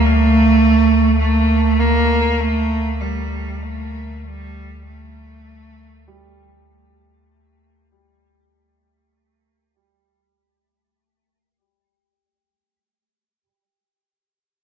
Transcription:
Already playing: D2 A3
1.19 A3
1.79 A#3
2.40 A3
3.01 G3
3.62 A3
4.24 G3
4.84 A3
6.08 G3

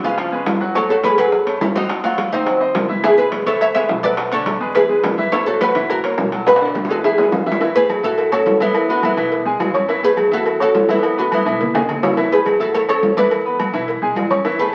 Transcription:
0.03 C#2 G#3 C#4 F4 G#4 B4, high bongo
0.18 F3 F4 F5, high bongo, high conga, high timbale
0.32 G#3 G#4 B4, high bongo, high conga
0.46 F#2, high bongo, low bongo, high conga, high timbale, low timbale
0.60 F#3 F#4 F#5
0.75 F#3 F#4 A4 C#5 F#5, high bongo, high conga, high timbale
0.89 A3 F#4 A4 C#5, high conga
1.03 G#4 B4, high bongo, high conga, high timbale, low timbale
1.17 F#2 F#3 F#4 G#4 B4 F#5, high conga, high timbale
1.32 high bongo, high conga
1.46 A3 A4 C#5, high conga, high timbale
1.60 G#2 C#4 E4, high bongo, low bongo, high conga, low timbale
1.75 C4 D#4 F#4 C5 D#5, high conga, high timbale
1.89 high bongo, high conga, high timbale
2.04 F#3 C#4 F4 F#4 F#5, high bongo, high conga, high timbale
2.18 high bongo, high conga, high timbale, low timbale
2.31 D#2 C4 D#4 C5 D#5, high bongo
2.46 F#3 F#4 F#5, high bongo, high conga, high timbale
2.60 C4 C5 D#5, high bongo, high conga
2.74 C#2, high bongo, low bongo, high conga, high timbale, low timbale
2.89 E3 E4 E5, high conga
3.03 E3 E4 G#4 E5, high bongo, high conga, high timbale
3.18 G#3 G#4 B4, high conga
3.32 high bongo, high conga, high timbale, low timbale
3.46 G#1 E3 E4 A4 C#5 E5, high conga, high timbale
3.61 C#5 E5, high bongo, high conga
3.75 G#3 G#4 B4 C#5 E5, high conga, high timbale
3.89 B1, high bongo, low bongo, high conga, low timbale
4.03 F#3 F#4 A4 B4 D5, high conga, high timbale
4.17 high bongo, high conga, high timbale
4.32 D3 D4 A4 C#5 D5, high bongo, high conga, high timbale
4.46 high bongo, high conga, high timbale, low timbale
4.60 E2 G#3 G#4 B4, high bongo
4.75 E3 E4 G#4 B4 E5, high bongo, high conga, high timbale
4.89 G#3 G#4 B4, high bongo, high conga
5.03 A1, high bongo, low bongo, high conga, high timbale, low timbale
5.18 E3 E4 E5, high conga
5.32 E3 E4 A4 C#5 E5, high bongo, high timbale
5.46 A3 F#4 A4 C#5, high conga
5.61 F#4 B4, high bongo, high conga, high timbale, low timbale
5.75 F#1 E3 E4 E5, high conga, high timbale
5.89 F#4 A#4, high bongo, high conga
6.04 A#3 A#4 C#5, high conga, high timbale
6.18 B1, high bongo, low bongo, high conga, low timbale
6.32 F#3 F#4 A4, high conga, high timbale
6.46 F#4 B4, high bongo, high conga, high timbale
6.56 high timbale
6.61 D3 D4 D5, high bongo, high conga
6.65 high timbale
6.75 high bongo, high conga, high timbale
6.85 low timbale
6.89 E2 G#3 F#4 G#4 A4 B4, high bongo
7.04 E3 E4 G#4 E5, high bongo, high conga
7.18 G#3 G#4 B4, high bongo, high conga
7.23 low timbale
7.32 A1, low bongo, high conga, low timbale
7.46 E3 E4 E5, low bongo
7.52 low timbale
7.61 E3 E4 E5, cowbell, high conga, low agogo
7.75 A3 G#4 A4 B4 A5, high conga
7.89 cowbell, high conga, low timbale, low agogo
8.03 A2 E4 F#4 A4 E5 E6, cowbell, high conga
8.18 cowbell, high conga, low agogo
8.32 C#4 F#4 A4 C#5 C#6, high conga, low agogo
8.46 E2, cowbell, high conga, low timbale
8.60 B3 E4 E5 E6, cowbell, high conga, low agogo
8.74 cowbell, low agogo
8.89 B3 D4 F#4 B4 B5, high conga
9.03 B3 E4, cowbell, high conga, low timbale, low agogo
9.17 B1 E3 E4 E5, cowbell, low agogo
9.32 cowbell, high conga
9.46 G#3 G#4 G#5, high conga
9.60 A1, cowbell, high conga, low timbale, low agogo
9.74 C#4 C#5 C#6, cowbell, high conga, low agogo
9.88 E3 E4 E5, cowbell, high conga, low agogo
10.03 A3 G#4 A4 B4 A5, high conga
10.17 cowbell, high conga, low timbale, low agogo
10.31 E2 E4 F#4 A4 E5 E6, cowbell, high conga
10.46 cowbell, high conga, low agogo
10.60 C#4 F#4 A4 C#5 C#6, high conga, low agogo
10.74 E2, cowbell, high conga, low timbale
10.88 B3 E4 E5 E6, cowbell, high conga, low agogo
11.03 cowbell, low agogo
11.17 B3 D4 F#4 B4 B5, high conga
11.32 B3 E4, cowbell, high conga, low timbale, low agogo
11.45 B1 E3 E4 E5, cowbell, high conga, low agogo
11.61 cowbell, low conga
11.74 B1 G#3 G#4 G#5, low conga, high timbale
11.88 A1, cowbell, low conga, low agogo
12.03 C#4 C#5 C#6, cowbell, low conga, low timbale, low agogo
12.17 E3 E4 E5, cowbell, high conga, low agogo
12.31 A3 G#4 A4 B4 A5, high conga
12.46 cowbell, high conga, low timbale, low agogo
12.59 E2 E4 F#4 A4 E5 E6, cowbell, high conga
12.74 A4 C#5, cowbell, high conga, low agogo
12.88 C#4 A4 C#5 C#6, high conga, low agogo
13.02 E2, cowbell, high conga, low timbale
13.17 E4 B4 D5 E5 E6, cowbell, high conga, low agogo
13.31 cowbell, high conga, low agogo
13.45 B3 B4 B5, high conga
13.60 cowbell, high conga, low timbale, low agogo
13.73 B1 E3 E4 E5, cowbell, low agogo
13.88 cowbell, high conga
14.02 B1 G#3 G#4 G#5, high conga
14.16 A1, cowbell, high conga, low timbale, low agogo
14.30 C#4 C#5 C#6, cowbell, high conga, low agogo
14.45 E3 E4 E5, cowbell, low agogo
14.59 A3 G#4 A4 B4 A5, high conga

